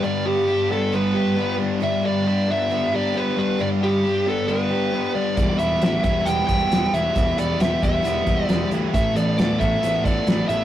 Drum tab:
HH |--------|--------|--------|xxxxxxxx|
SD |--------|--------|--------|--o---o-|
BD |--------|--------|--------|o--o-o--|

HH |xxxxxxxx|xxxxxxxx|
SD |--o---o-|--o---o-|
BD |o--o-o--|o--o-o--|